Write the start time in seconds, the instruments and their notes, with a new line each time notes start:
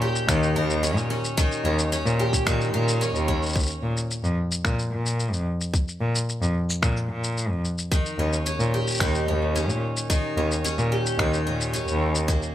Already playing: twelve-string acoustic guitar D#3 C#4
0.02 twelve-string acoustic guitar G4
0.15 shaker
0.29 cello D#2, twelve-string acoustic guitar D#3, finger snap, kick, shaker
0.43 shaker
0.56 cello D#2, twelve-string acoustic guitar A#4
0.70 shaker
0.83 twelve-string acoustic guitar C#4, shaker
0.96 cello A#2, shaker
1.10 twelve-string acoustic guitar C#4
1.24 shaker
1.37 twelve-string acoustic guitar D#3, kick, shaker
1.52 shaker
1.65 cello D#2, twelve-string acoustic guitar C#4
1.79 shaker
1.92 twelve-string acoustic guitar C#4, shaker
2.06 cello A#2, shaker
2.19 twelve-string acoustic guitar G4
2.33 kick, shaker
2.46 cello A#2, twelve-string acoustic guitar D#3, finger snap, kick, shaker
2.61 shaker
2.74 cello A#2, twelve-string acoustic guitar A#4
2.88 shaker
3.01 twelve-string acoustic guitar C#4, shaker
3.15 cello D#2, shaker
3.28 twelve-string acoustic guitar C#4, kick
3.43 shaker
3.46 shaker
3.49 shaker
3.53 kick, shaker
3.56 shaker
3.59 shaker
3.63 shaker
3.66 shaker
3.70 shaker
3.83 cello A#2
3.97 shaker
4.11 shaker
4.24 cello F2, shaker
4.51 shaker
4.65 cello A#2, finger snap, kick, shaker
4.79 shaker
4.92 cello A#2
5.06 shaker
5.20 shaker
5.32 cello F2, shaker
5.61 shaker
5.74 kick, shaker
5.88 shaker
6.01 cello A#2
6.15 shaker
6.29 shaker
6.41 cello F2, shaker
6.70 shaker
6.82 cello A#2, finger snap, kick, shaker
6.97 shaker
7.10 cello A#2
7.24 shaker
7.37 shaker
7.50 cello F2
7.65 shaker
7.78 shaker
7.92 twelve-string acoustic guitar D#3, kick, shaker
8.06 shaker
8.19 cello D#2, twelve-string acoustic guitar C#4
8.33 shaker
8.46 twelve-string acoustic guitar C#4, shaker
8.60 cello A#2, shaker
8.74 twelve-string acoustic guitar G4
8.87 shaker
8.90 shaker
8.94 shaker
8.97 cello D#2, twelve-string acoustic guitar D#3, finger snap, kick, shaker
9.01 shaker
9.04 shaker
9.11 shaker
9.15 shaker
9.28 cello D#2, twelve-string acoustic guitar C#4
9.56 twelve-string acoustic guitar C#4, shaker
9.69 cello A#2, shaker
9.97 shaker
10.10 twelve-string acoustic guitar D#3, kick, shaker
10.37 cello D#2, twelve-string acoustic guitar C#4
10.52 shaker
10.64 twelve-string acoustic guitar C#4, shaker
10.78 cello A#2, shaker
10.92 twelve-string acoustic guitar G4
11.06 shaker
11.19 cello D#2, twelve-string acoustic guitar D#3, finger snap, kick
11.33 shaker
11.46 cello A#2, twelve-string acoustic guitar C#4
11.61 shaker
11.73 twelve-string acoustic guitar C#4, shaker
11.87 cello D#2, shaker
12.15 shaker
12.28 twelve-string acoustic guitar A#2, kick, shaker
12.42 shaker